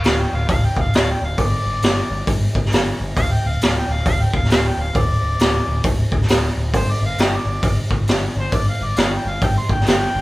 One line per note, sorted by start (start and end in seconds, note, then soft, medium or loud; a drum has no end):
0.04 0.24 D1 medium
0.04 0.21 F5 medium
0.04 snare loud
0.04 open hi-hat soft
0.20 0.37 G5 medium
0.32 0.44 D1 medium
0.32 0.49 F5 medium
0.48 0.68 D1 medium
0.48 0.66 F5 medium
0.48 kick loud
0.48 open hi-hat medium
0.65 0.83 G5 medium
0.76 0.88 D1 medium
0.76 kick medium
0.81 0.94 F5 medium
0.93 1.13 D1 medium
0.93 1.12 F5 medium
0.93 snare loud
0.93 open hi-hat medium
1.11 1.24 G5 medium
1.21 1.33 D1 medium
1.21 1.40 F5 medium
1.38 1.58 G1 loud
1.38 2.25 D5 loud
1.38 kick medium
1.38 open hi-hat soft
1.66 1.78 G1 medium
1.82 2.02 G1 medium
1.82 snare loud
1.82 open hi-hat medium
2.10 2.22 G1 medium
2.27 2.47 G1 loud
2.27 kick loud
2.27 open hi-hat medium
2.55 2.67 G1 medium
2.55 kick medium
2.65 snare soft
2.72 2.92 G1 medium
2.72 snare loud
2.72 open hi-hat medium
3.00 3.12 G1 medium
3.17 3.36 D1 medium
3.17 3.34 F5 loud
3.17 kick medium
3.17 open hi-hat soft
3.33 3.49 G5 medium
3.44 3.56 D1 medium
3.44 3.62 F5 medium
3.61 3.81 D1 medium
3.61 3.77 F5 medium
3.61 snare loud
3.61 open hi-hat medium
3.77 3.94 G5 medium
3.88 4.01 D1 medium
3.92 4.06 F5 medium
4.06 4.25 D1 loud
4.06 4.24 F5 loud
4.06 kick loud
4.06 open hi-hat medium
4.23 4.36 G5 medium
4.33 4.45 D1 medium
4.33 4.50 F5 medium
4.33 kick medium
4.44 snare soft
4.50 4.69 D1 medium
4.50 4.69 F5 medium
4.50 snare loud
4.50 open hi-hat medium
4.67 4.84 G5 medium
4.77 4.89 D1 medium
4.83 4.98 F5 medium
4.95 5.15 D1 loud
4.95 5.83 D5 loud
4.95 kick loud
4.95 open hi-hat soft
5.22 5.35 D1 medium
5.39 5.59 D1 medium
5.39 snare loud
5.39 open hi-hat medium
5.67 5.79 D1 medium
5.83 6.04 D1 medium
5.83 kick loud
5.83 open hi-hat medium
6.12 6.24 D1 medium
6.12 kick medium
6.22 snare soft
6.28 6.48 D1 medium
6.28 snare loud
6.28 open hi-hat medium
6.56 6.73 D1 medium
6.73 6.93 G1 medium
6.73 6.92 C5 medium
6.73 kick loud
6.73 open hi-hat medium
6.91 7.04 D5 medium
7.01 7.13 G1 medium
7.06 7.23 F5 medium
7.18 7.37 G1 medium
7.18 snare loud
7.18 open hi-hat medium
7.22 7.37 G5 medium
7.36 7.78 D5 medium
7.45 7.57 G1 medium
7.63 7.83 G1 medium
7.63 kick loud
7.63 open hi-hat medium
7.91 8.03 G1 medium
7.91 kick medium
8.07 8.27 G1 medium
8.07 snare loud
8.07 open hi-hat medium
8.35 8.47 G1 medium
8.40 8.56 C5 loud
8.52 8.72 G1 medium
8.52 8.68 D5 medium
8.52 kick loud
8.52 open hi-hat medium
8.69 8.86 F5 medium
8.80 8.92 G1 medium
8.80 9.00 D5 medium
8.96 9.17 G1 medium
8.96 9.15 F5 medium
8.96 snare loud
8.96 open hi-hat medium
9.14 9.31 G5 medium
9.25 9.37 G1 medium
9.25 9.42 F5 medium
9.41 9.61 G1 loud
9.41 9.57 G5 medium
9.41 kick loud
9.41 open hi-hat medium
9.58 9.72 C6 medium
9.69 9.81 G1 medium
9.69 9.86 G5 medium
9.69 kick medium
9.80 snare soft
9.86 10.06 G1 loud
9.86 10.21 G5 loud
9.86 snare loud
9.86 open hi-hat medium
10.15 10.21 G1 medium